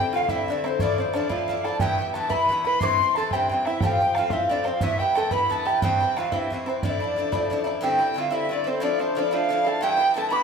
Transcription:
Already playing: E4 G4 G5
0.00 D3 C4
0.13 G2 D3 C4 F4 F5
0.17 E4
0.29 G2 D3 C4 E4 E5, bodhran
0.48 G2 D3 C4 D4 E4 D5, bodhran
0.64 D3 C4 E4 C5, bodhran
0.79 A2 F3 D4 E4 D5, bodhran
0.98 F3 C4 D4 E4 C5, bodhran
1.13 A2 F3 D4 E4 D5, bodhran
1.29 A2 F3 D4 E4 F4 F5, bodhran
1.48 A2 F3 D4 E4, bodhran
1.64 D4 E4 A4 A5, bodhran
1.68 F3
1.80 G2 E3 B3 E4 G4 G5, bodhran
1.98 E3 B3 E4, bodhran
2.14 G2 E3 B3 E4 A5, bodhran
2.29 G2 E3 B3 E4 B4 B5, bodhran
2.49 G2 E3 B3 E4, bodhran
2.65 B3 E4 B4 B5, bodhran
2.69 E3
2.79 G2 E3 C4 C6 D6, bodhran
2.83 E4 C5 C6
3.00 E3 C4 E4, bodhran
3.15 G2 E3 C4 A4 A5, bodhran
3.19 E4
3.31 E3 C4 E4 G4 G5, bodhran
3.35 G2
3.50 G2 E3 C4, bodhran
3.54 E4
3.65 C4 E4 E5, bodhran
3.70 E3
3.80 A2 F3 C4 G4 G5 A5, bodhran
3.85 F4 G5
3.99 C4 F4, bodhran
4.04 F3
4.14 A2 F3 F5, bodhran
4.18 C4 F4
4.30 A2 F3 C4 E4 F4 E5, bodhran
4.49 A2 F3 C4 D4 F4 D5, bodhran
4.64 F3 C4 F4 C5, bodhran
4.77 F5, bodhran
4.81 G2 E3 B3 E4 E5
4.99 E3 B3 E4 G4 G5, bodhran
5.15 G2 E3 B3 E4 A4 A5, bodhran
5.31 G2 E3 B3 E4 B4 B5, bodhran
5.50 G2 E3 B3 E4 A5, bodhran
5.65 E3 B3 E4 G4 G5, bodhran
5.82 G2 E3 C4 E4 G4 G5, bodhran
6.00 E3 C4 E4, bodhran
6.16 G2 E3 C4 E4 F4 F5, bodhran
6.32 G2 E3 C4 E4 E5, bodhran
6.50 G2 E3 C4 E4, bodhran
6.66 E3 C4 E4 C5, bodhran
6.83 A2 F3 D4 E4 D5 E5, bodhran
6.89 D5
7.00 F3 D4 E4, bodhran
7.16 A2 F3 D4 E4
7.32 A2 F3 D4 E4, bodhran
7.50 A2 F3 D4 E4, bodhran
7.64 F3 D4 E4, bodhran
7.81 G2 D3 C4 E4 G4 G5
7.86 G5
7.99 D3 C4 E4
8.14 G2 D3 C4 E4 F4
8.20 F5
8.30 G2 D3 C4 E4 E5
8.35 E5
8.49 G2 D3 C4 D5
8.53 E4 D5
8.64 D3 C4 E4 C5
8.69 C5
8.80 A2 F3 D4 E4 D5
8.99 F3 C4 D4 E4 C5
9.15 A2 F3 D4 E4 D5
9.31 A2 F3 D4 E4 F4 F5
9.49 A2 F3 D4 E4
9.64 F3 D4 E4 A4 A5
9.81 G2 E3 B3 E4 G4 G5 A5
9.89 G5
9.97 E3 B3 E4
10.14 G2 E3 B3 E4 A4 A5
10.30 G2 E3 B3 E4 B4 B5 D6
10.36 B5

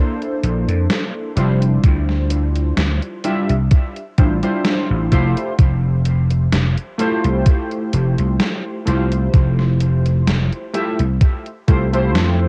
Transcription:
Already playing: A#3 D4 E4 A4 C5
0.22 closed hi-hat
0.43 A#1, closed hi-hat
0.68 F2, closed hi-hat
0.90 snare, closed hi-hat
1.36 F1 G3 D4 E4 F4 C5, closed hi-hat
1.62 closed hi-hat
1.84 D2, kick, closed hi-hat
2.09 snare
2.30 closed hi-hat
2.56 closed hi-hat
2.77 D2, snare, closed hi-hat
3.02 closed hi-hat
3.24 G3 D4 E4 F4 E5, closed hi-hat
3.49 C2, closed hi-hat
3.71 kick, closed hi-hat
3.96 closed hi-hat
4.18 A1 G3 D4 E4 F4 C5, kick, closed hi-hat
4.43 G3 D4 E4 F4 C5, closed hi-hat
4.65 snare, closed hi-hat
4.90 A1
5.11 F1 A3 E4 F4 G4 C5, kick, closed hi-hat
5.37 closed hi-hat
5.59 F1, kick, closed hi-hat
6.05 closed hi-hat
6.30 closed hi-hat
6.52 F1, snare, closed hi-hat
6.77 closed hi-hat
6.98 A3 E4 F4 G4 C5, closed hi-hat
7.24 C2, closed hi-hat
7.46 kick, closed hi-hat
7.71 closed hi-hat
7.93 F1, closed hi-hat
8.18 C2, closed hi-hat
8.40 snare, closed hi-hat
8.85 C2 A3 E4 F4 G4 C5, closed hi-hat
9.12 closed hi-hat
9.34 F1, kick, closed hi-hat
9.59 snare
9.81 closed hi-hat
10.06 closed hi-hat
10.28 F1, snare, closed hi-hat
10.53 closed hi-hat
10.74 A3 E4 F4 G4 E5, closed hi-hat
10.99 C2, closed hi-hat
11.21 kick, closed hi-hat
11.46 closed hi-hat
11.67 C2 A3 E4 F4 G4 C5, kick, closed hi-hat
11.93 A3 E4 F4 G4 C5, closed hi-hat
12.15 F2, snare, closed hi-hat

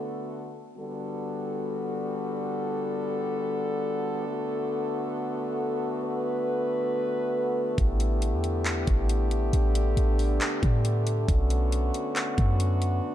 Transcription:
Already playing: D3 A3 B3 F#4 A4
0.77 D3 G3 B3 F#4 A4
4.28 A3 F#4
6.03 B4
7.78 A1 D3 E4 G4, kick, closed hi-hat
8.00 closed hi-hat
8.22 closed hi-hat
8.33 E2
8.44 closed hi-hat
8.65 clap, closed hi-hat
8.87 A1, kick, closed hi-hat
9.09 closed hi-hat
9.31 closed hi-hat
9.53 A1 D4, closed hi-hat
9.75 closed hi-hat
9.97 A1, closed hi-hat
10.19 open hi-hat
10.41 clap, closed hi-hat
10.63 A2, kick, closed hi-hat
10.85 closed hi-hat
11.07 closed hi-hat
11.28 B1 B3 C#4 F#4, kick, closed hi-hat
11.50 closed hi-hat
11.72 closed hi-hat
11.94 closed hi-hat
12.16 clap, closed hi-hat
12.38 F#2, kick, closed hi-hat
12.60 closed hi-hat
12.82 closed hi-hat
13.04 D4

